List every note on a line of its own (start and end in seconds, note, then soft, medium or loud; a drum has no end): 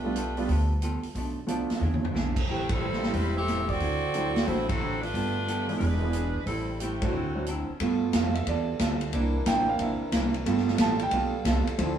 0.00 0.45 B1 medium
0.00 0.14 G3 medium
0.00 0.79 A3 medium
0.00 0.14 A3 medium
0.00 0.79 D4 medium
0.00 0.79 F4 medium
0.00 0.79 B4 medium
0.04 0.15 B3 medium
0.04 0.15 D4 medium
0.04 0.15 F4 medium
0.15 0.38 G3 medium
0.15 0.39 B3 medium
0.15 0.39 F4 medium
0.15 0.39 A4 medium
0.15 closed hi-hat medium
0.37 0.48 G3 medium
0.37 0.48 A3 medium
0.37 0.48 B3 medium
0.37 0.48 D4 medium
0.37 0.49 F4 medium
0.37 open hi-hat soft
0.48 1.00 D2 medium
0.48 0.71 G3 medium
0.48 0.72 B3 soft
0.48 0.73 F4 soft
0.48 0.73 A4 medium
0.48 kick soft
0.48 open hi-hat soft
0.82 1.05 G3 medium
0.82 1.05 B3 medium
0.82 1.05 F4 medium
0.82 1.06 A4 medium
0.82 closed hi-hat soft
1.03 muted upright bass stroke soft
1.03 open hi-hat soft
1.15 1.66 B1 medium
1.15 1.38 B2 soft
1.15 1.38 F3 soft
1.15 1.39 A3 medium
1.15 1.39 D4 medium
1.15 kick soft
1.15 open hi-hat soft
1.47 1.70 B2 medium
1.47 1.81 F3 medium
1.47 1.71 F3 medium
1.47 1.81 A3 medium
1.47 1.72 A3 medium
1.47 1.81 B3 medium
1.47 1.82 D4 medium
1.47 1.72 D4 medium
1.47 1.82 F4 medium
1.47 closed hi-hat medium
1.70 muted upright bass stroke soft
1.70 snare soft
1.70 open hi-hat soft
1.80 2.12 E2 medium
1.80 2.04 E3 soft
1.80 2.05 B3 soft
1.80 2.05 D4 soft
1.80 2.06 G#4 medium
1.80 high tom soft
1.94 high tom medium
2.05 floor tom medium
2.14 2.46 B1 medium
2.14 2.37 E3 medium
2.14 2.38 B3 medium
2.14 2.38 D4 medium
2.14 2.38 G#4 medium
2.14 snare soft
2.36 kick medium
2.36 crash medium
2.47 3.11 A1 medium
2.47 2.70 A2 soft
2.47 2.69 E3 medium
2.47 2.71 G3 soft
2.47 2.69 A3 medium
2.47 2.71 C4 soft
2.47 2.69 C4 medium
2.47 2.72 E4 medium
2.47 2.69 G4 medium
2.47 kick soft
2.69 3.14 G3 medium
2.69 3.14 C4 medium
2.69 3.15 E4 medium
2.69 3.15 A4 medium
2.69 kick medium
2.69 ride medium
2.80 3.03 A2 medium
2.80 3.31 G3 medium
2.80 3.04 G3 medium
2.80 3.31 A3 soft
2.80 3.31 C4 soft
2.80 3.04 C4 medium
2.80 3.32 E4 medium
2.80 3.05 E4 medium
2.80 3.31 B4 soft
2.93 snare soft
3.03 snare soft
3.13 3.77 E1 medium
3.13 3.36 A2 soft
3.13 3.37 G3 soft
3.13 3.37 G3 medium
3.13 3.38 C4 soft
3.13 3.36 C4 medium
3.13 3.37 E4 medium
3.13 3.38 E4 soft
3.13 3.36 B4 medium
3.13 kick soft
3.13 open hi-hat soft
3.36 3.67 C4 medium
3.36 3.67 G4 medium
3.36 3.67 A4 medium
3.36 3.67 E5 loud
3.47 3.70 A2 medium
3.47 3.70 G3 medium
3.47 3.71 C4 medium
3.47 3.71 E4 medium
3.47 snare soft
3.47 closed hi-hat soft
3.69 4.48 C4 medium
3.69 4.46 F#4 medium
3.69 4.48 A4 medium
3.69 4.48 D5 loud
3.69 kick soft
3.69 open hi-hat soft
3.80 4.44 D2 medium
3.80 4.03 D3 soft
3.80 4.04 F#3 soft
3.80 4.04 C4 soft
3.80 4.05 E4 medium
3.80 kick soft
3.80 open hi-hat soft
4.13 4.36 D3 medium
4.13 4.37 F#3 medium
4.13 4.65 F#3 soft
4.13 4.65 A3 soft
4.13 4.37 C4 medium
4.13 4.65 C4 soft
4.13 4.66 D4 soft
4.13 4.38 E4 medium
4.13 4.66 E4 medium
4.13 closed hi-hat medium
4.36 snare medium
4.36 open hi-hat soft
4.47 5.11 A1 medium
4.47 4.70 D3 soft
4.47 4.71 F#3 soft
4.47 4.69 A3 medium
4.47 4.71 C4 medium
4.47 4.67 E4 medium
4.47 4.72 E4 soft
4.47 4.69 F#4 medium
4.47 4.69 C5 medium
4.47 kick soft
4.47 open hi-hat soft
4.68 5.02 F#3 medium
4.68 5.02 C4 medium
4.68 5.02 E4 medium
4.68 5.02 A4 loud
4.68 kick medium
4.68 ride medium
4.80 5.03 D3 medium
4.80 5.04 F#3 medium
4.80 5.04 C4 medium
4.80 5.04 E4 medium
5.01 5.80 A3 medium
5.01 5.76 D4 medium
5.01 5.80 F4 medium
5.01 5.77 B4 loud
5.01 open hi-hat soft
5.14 5.77 G1 medium
5.14 5.37 G3 soft
5.14 5.37 B3 soft
5.14 5.38 F4 medium
5.14 5.38 A4 soft
5.14 kick soft
5.14 open hi-hat soft
5.48 5.70 G3 medium
5.48 5.71 B3 medium
5.48 5.71 F4 medium
5.48 5.71 A4 medium
5.48 closed hi-hat soft
5.67 5.79 E3 medium
5.67 5.79 G#3 medium
5.67 5.79 B3 medium
5.67 5.80 D4 medium
5.67 5.80 E4 medium
5.67 open hi-hat soft
5.77 6.31 E1 medium
5.77 6.03 E3 soft
5.77 6.42 G#3 medium
5.77 6.42 D4 medium
5.77 6.42 E4 medium
5.77 6.42 B4 medium
5.77 kick soft
5.77 open hi-hat soft
5.81 6.04 B3 soft
5.81 6.04 D4 soft
5.81 6.05 G#4 soft
6.01 6.12 E3 medium
6.01 6.12 G#3 medium
6.01 6.13 B3 medium
6.01 6.13 D4 medium
6.01 6.13 E4 medium
6.13 6.36 E3 medium
6.13 6.37 B3 medium
6.13 6.37 D4 medium
6.13 6.38 G#4 medium
6.13 closed hi-hat soft
6.34 6.45 E2 medium
6.46 7.10 A1 medium
6.46 6.70 A2 soft
6.46 6.78 G3 medium
6.46 6.71 G3 soft
6.46 6.78 C4 medium
6.46 6.71 C4 soft
6.46 6.78 E4 medium
6.46 6.78 A4 medium
6.46 kick soft
6.46 open hi-hat soft
6.51 6.72 E4 soft
6.80 7.03 A2 medium
6.80 7.01 E3 medium
6.80 7.04 G3 medium
6.80 7.00 A3 medium
6.80 7.00 C4 medium
6.80 7.04 C4 medium
6.80 7.05 E4 medium
6.80 7.02 G4 medium
6.80 closed hi-hat medium
7.01 7.47 E3 medium
7.01 7.12 F#3 medium
7.01 7.12 A3 medium
7.01 7.47 A3 medium
7.01 7.47 C4 medium
7.01 7.13 C4 medium
7.01 7.13 D4 medium
7.01 7.13 E4 medium
7.01 7.47 F#4 medium
7.01 kick medium
7.01 ride medium
7.13 7.64 D2 medium
7.13 7.36 D3 soft
7.13 7.37 F#3 soft
7.13 7.37 C4 soft
7.17 7.38 E4 medium
7.35 7.46 F#3 medium
7.35 7.46 A3 soft
7.35 7.46 C4 soft
7.35 7.46 D4 soft
7.35 7.46 E4 medium
7.46 7.70 D3 medium
7.46 7.70 F#3 medium
7.46 7.71 C4 medium
7.46 7.71 E4 medium
7.46 closed hi-hat medium
7.68 muted upright bass stroke soft
7.80 8.12 G2 medium
7.80 8.03 G3 soft
7.80 9.13 G3 medium
7.80 8.32 A3 soft
7.80 8.32 B3 soft
7.80 8.04 B3 medium
7.80 9.13 B3 medium
7.80 9.13 F4 medium
7.80 8.33 F4 medium
7.80 8.04 F4 medium
7.80 9.13 A4 medium
7.80 8.04 A4 soft
7.80 kick soft
7.80 ride medium
8.13 8.45 F2 medium
8.13 8.36 G3 medium
8.13 8.37 B3 medium
8.13 8.37 F4 medium
8.13 8.37 A4 medium
8.13 8.35 F5 medium
8.13 kick soft
8.13 snare medium
8.13 hi-hat pedal medium
8.13 ride medium
8.35 8.46 E5 medium
8.35 ride soft
8.47 8.79 E2 medium
8.47 8.69 G3 soft
8.47 8.70 B3 soft
8.47 8.71 F4 soft
8.47 8.99 D5 medium
8.47 kick soft
8.47 ride medium
8.51 8.71 A4 soft
8.79 9.12 D2 medium
8.79 9.03 G3 medium
8.79 9.03 B3 medium
8.79 9.03 F4 medium
8.79 9.04 A4 medium
8.79 kick soft
8.79 snare medium
8.79 hi-hat pedal medium
8.79 ride medium
9.01 ride soft
9.13 9.45 C2 medium
9.13 9.36 C3 medium
9.13 10.45 E3 medium
9.13 10.42 A#3 soft
9.13 9.36 A#3 medium
9.13 10.45 C4 medium
9.13 10.45 D4 medium
9.13 10.42 D4 soft
9.13 9.37 D4 medium
9.13 10.43 E4 medium
9.13 9.37 E4 medium
9.13 10.45 A#4 medium
9.13 kick soft
9.13 ride medium
9.46 9.79 A1 medium
9.46 9.69 C3 medium
9.46 9.69 A#3 medium
9.46 9.70 D4 medium
9.46 9.70 E4 medium
9.46 9.67 G5 medium
9.46 kick soft
9.46 snare medium
9.46 hi-hat pedal medium
9.46 ride medium
9.69 9.80 F5 medium
9.79 9.99 A#1 medium
9.79 10.02 C3 soft
9.79 10.03 A#3 soft
9.79 10.04 D4 soft
9.79 10.32 E5 medium
9.79 kick soft
9.79 ride medium
9.84 10.04 E4 soft
10.01 muted upright bass stroke soft
10.12 10.45 C2 medium
10.12 10.36 C3 medium
10.12 10.36 A#3 medium
10.12 10.37 D4 medium
10.12 10.37 E4 medium
10.12 kick soft
10.12 snare medium
10.12 hi-hat pedal medium
10.12 ride medium
10.34 ride soft
10.46 10.77 G1 medium
10.46 10.69 G3 medium
10.46 11.78 G3 medium
10.46 10.98 A3 soft
10.46 10.98 B3 soft
10.46 11.78 B3 medium
10.46 10.69 B3 medium
10.46 11.78 F4 medium
10.46 10.99 F4 medium
10.46 10.70 F4 soft
10.46 11.98 A4 medium
10.46 kick soft
10.46 ride medium
10.50 10.71 A4 medium
10.57 snare soft
10.68 snare soft
10.78 11.11 A1 medium
10.78 11.02 G3 medium
10.78 11.02 B3 medium
10.78 11.03 F4 medium
10.78 11.03 A4 medium
10.78 11.01 A5 medium
10.78 kick soft
10.78 snare medium
10.78 hi-hat pedal medium
10.78 ride medium
10.99 11.13 G5 medium
10.99 ride medium
11.11 11.44 B1 medium
11.11 11.35 G3 soft
11.11 11.32 A3 soft
11.11 11.32 B3 soft
11.11 11.36 B3 soft
11.11 11.32 F4 soft
11.11 11.36 F4 soft
11.11 11.64 F5 medium
11.11 kick soft
11.11 ride medium
11.16 11.37 A4 medium
11.45 11.65 C2 medium
11.45 11.68 G3 medium
11.45 11.69 B3 medium
11.45 11.69 F4 medium
11.45 11.69 A4 medium
11.45 kick soft
11.45 snare medium
11.45 hi-hat pedal medium
11.45 ride medium
11.67 muted upright bass stroke soft
11.67 ride soft
11.78 11.98 D2 medium
11.78 11.98 D3 medium
11.78 11.98 F3 medium
11.78 11.98 C4 medium
11.78 11.98 C4 soft
11.78 11.98 C4 medium
11.78 11.98 D4 medium
11.78 11.98 E4 medium
11.78 11.98 F4 medium
11.78 11.98 A4 medium
11.78 kick soft
11.78 ride medium